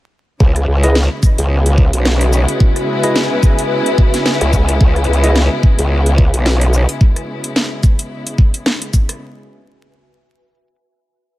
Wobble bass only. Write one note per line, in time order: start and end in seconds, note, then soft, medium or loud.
0.40 0.66 C#2 loud
0.68 1.09 C#2 medium
1.39 1.91 C#2 loud
1.93 2.46 B1 loud
4.41 4.79 C#2 loud
4.81 5.06 C#2 loud
5.08 5.49 C#2 loud
5.79 6.31 C#2 loud
6.34 6.86 B1 loud